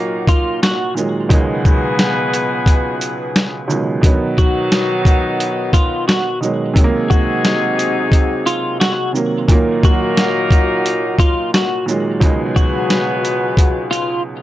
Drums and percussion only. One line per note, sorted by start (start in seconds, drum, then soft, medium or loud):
0.27 kick medium
0.27 closed hi-hat soft
0.27 shaker soft
0.63 snare loud
0.63 closed hi-hat medium
0.97 shaker medium
1.30 kick loud
1.30 closed hi-hat medium
1.65 kick loud
1.65 shaker medium
1.99 snare loud
1.99 closed hi-hat medium
2.34 closed hi-hat medium
2.34 shaker medium
2.66 kick medium
2.66 closed hi-hat medium
3.01 closed hi-hat medium
3.01 shaker medium
3.36 snare loud
3.36 closed hi-hat medium
3.70 shaker medium
4.03 kick loud
4.03 closed hi-hat medium
4.38 kick loud
4.38 shaker medium
4.72 snare loud
4.72 closed hi-hat medium
5.05 kick medium
5.05 closed hi-hat medium
5.05 shaker medium
5.40 closed hi-hat medium
5.73 kick medium
5.73 closed hi-hat medium
5.73 shaker soft
6.09 snare loud
6.09 closed hi-hat medium
6.43 shaker medium
6.76 kick loud
6.76 closed hi-hat medium
7.11 kick loud
7.11 shaker medium
7.45 snare loud
7.45 closed hi-hat medium
7.79 closed hi-hat medium
7.79 shaker medium
8.12 kick medium
8.12 closed hi-hat medium
8.47 closed hi-hat medium
8.47 shaker soft
8.81 snare loud
8.81 closed hi-hat medium
9.15 shaker medium
9.49 kick loud
9.49 closed hi-hat medium
9.83 kick loud
9.83 shaker medium
10.17 snare loud
10.17 closed hi-hat medium
10.51 kick medium
10.51 closed hi-hat medium
10.51 shaker medium
10.86 closed hi-hat medium
11.19 kick medium
11.19 closed hi-hat soft
11.19 shaker medium
11.54 snare loud
11.54 closed hi-hat medium
11.88 shaker medium
12.21 kick loud
12.21 closed hi-hat medium
12.56 kick loud
12.56 shaker medium
12.90 snare loud
12.90 closed hi-hat medium
13.25 closed hi-hat medium
13.25 shaker medium
13.57 kick medium
13.57 closed hi-hat medium
13.93 closed hi-hat medium
13.93 shaker medium